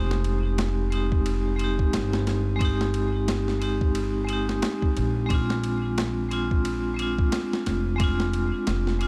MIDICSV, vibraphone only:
0, 0, Header, 1, 2, 480
1, 0, Start_track
1, 0, Tempo, 674157
1, 1853, Time_signature, 4, 2, 24, 8
1, 6463, End_track
2, 0, Start_track
2, 0, Title_t, "Vibraphone"
2, 0, Program_c, 0, 11
2, 0, Note_on_c, 0, 56, 93
2, 0, Note_on_c, 0, 60, 84
2, 0, Note_on_c, 0, 63, 82
2, 0, Note_on_c, 0, 67, 98
2, 71, Control_c, 0, 64, 127
2, 614, Note_off_c, 0, 56, 0
2, 623, Note_off_c, 0, 60, 0
2, 634, Note_off_c, 0, 63, 0
2, 643, Note_off_c, 0, 67, 0
2, 645, Note_on_c, 0, 56, 73
2, 654, Note_on_c, 0, 60, 64
2, 665, Note_on_c, 0, 63, 65
2, 678, Note_on_c, 0, 67, 77
2, 1101, Note_off_c, 0, 56, 0
2, 1110, Note_off_c, 0, 60, 0
2, 1110, Note_on_c, 0, 56, 79
2, 1115, Note_off_c, 0, 63, 0
2, 1122, Note_off_c, 0, 67, 0
2, 1128, Note_on_c, 0, 60, 72
2, 1146, Note_on_c, 0, 63, 72
2, 1168, Note_on_c, 0, 67, 91
2, 1815, Note_off_c, 0, 56, 0
2, 1823, Note_on_c, 0, 56, 87
2, 1827, Note_off_c, 0, 60, 0
2, 1836, Note_off_c, 0, 63, 0
2, 1846, Note_on_c, 0, 60, 88
2, 1847, Note_off_c, 0, 67, 0
2, 1864, Note_on_c, 0, 63, 86
2, 1885, Note_on_c, 0, 67, 105
2, 2534, Note_off_c, 0, 56, 0
2, 2545, Note_off_c, 0, 60, 0
2, 2555, Note_off_c, 0, 63, 0
2, 2560, Note_on_c, 0, 56, 73
2, 2565, Note_off_c, 0, 67, 0
2, 2571, Note_on_c, 0, 60, 62
2, 2579, Note_on_c, 0, 63, 67
2, 2589, Note_on_c, 0, 67, 81
2, 3013, Note_off_c, 0, 56, 0
2, 3022, Note_on_c, 0, 56, 81
2, 3028, Note_off_c, 0, 60, 0
2, 3032, Note_off_c, 0, 63, 0
2, 3037, Note_off_c, 0, 67, 0
2, 3042, Note_on_c, 0, 60, 73
2, 3061, Note_on_c, 0, 63, 78
2, 3082, Note_on_c, 0, 67, 91
2, 3734, Note_off_c, 0, 56, 0
2, 3744, Note_off_c, 0, 60, 0
2, 3745, Note_on_c, 0, 56, 91
2, 3753, Note_off_c, 0, 63, 0
2, 3763, Note_off_c, 0, 67, 0
2, 3765, Note_on_c, 0, 60, 84
2, 3781, Note_on_c, 0, 62, 81
2, 3782, Control_c, 0, 64, 0
2, 3802, Note_on_c, 0, 65, 97
2, 3923, Control_c, 0, 64, 127
2, 4455, Note_off_c, 0, 56, 0
2, 4465, Note_off_c, 0, 60, 0
2, 4473, Note_off_c, 0, 62, 0
2, 4478, Note_on_c, 0, 56, 71
2, 4484, Note_off_c, 0, 65, 0
2, 4489, Note_on_c, 0, 60, 67
2, 4501, Note_on_c, 0, 62, 67
2, 4509, Note_on_c, 0, 65, 84
2, 4934, Note_off_c, 0, 56, 0
2, 4943, Note_on_c, 0, 56, 81
2, 4947, Note_off_c, 0, 60, 0
2, 4953, Note_off_c, 0, 62, 0
2, 4957, Note_off_c, 0, 65, 0
2, 4959, Note_on_c, 0, 60, 76
2, 4982, Note_on_c, 0, 62, 74
2, 5000, Note_on_c, 0, 65, 88
2, 5654, Note_off_c, 0, 56, 0
2, 5662, Note_off_c, 0, 60, 0
2, 5666, Note_on_c, 0, 56, 92
2, 5674, Note_off_c, 0, 62, 0
2, 5683, Note_off_c, 0, 65, 0
2, 5683, Note_on_c, 0, 60, 84
2, 5704, Note_on_c, 0, 62, 86
2, 5722, Note_on_c, 0, 65, 97
2, 6376, Note_off_c, 0, 56, 0
2, 6384, Note_off_c, 0, 60, 0
2, 6394, Note_off_c, 0, 62, 0
2, 6400, Note_on_c, 0, 56, 69
2, 6404, Note_off_c, 0, 65, 0
2, 6408, Note_on_c, 0, 60, 65
2, 6418, Note_on_c, 0, 62, 66
2, 6427, Note_on_c, 0, 65, 83
2, 6463, Note_off_c, 0, 56, 0
2, 6463, Note_off_c, 0, 60, 0
2, 6463, Note_off_c, 0, 62, 0
2, 6463, Note_off_c, 0, 65, 0
2, 6463, End_track
0, 0, End_of_file